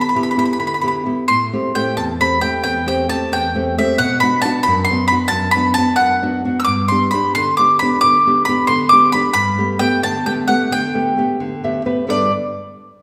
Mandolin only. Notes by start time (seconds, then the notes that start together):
0.01 B5
0.09 B5
0.16 B5
0.23 B5
0.31 B5
0.39 B5
0.45 B5
0.53 B5
0.60 B5
0.67 B5
0.74 B5
0.81 B5
0.88 B5
1.28 C6
1.75 G5
1.97 A5
2.21 B5
2.41 G5
2.63 G5
2.88 G5
3.09 A5
3.33 G5
3.79 E5
3.98 F#5
4.20 B5
4.42 A5
4.63 B5
4.85 C6
5.08 B5
5.28 A5
5.51 B5
5.74 A5
5.96 F#5
6.60 E6
6.65 D6
6.88 C6
7.11 B5
7.35 C6
7.57 D6
7.79 B5
8.01 D6
8.45 B5
8.67 C6
8.89 D6
9.12 B5
9.33 B5
9.79 G5
10.03 A5
10.26 G5
10.48 F#5
10.72 G5
12.10 D5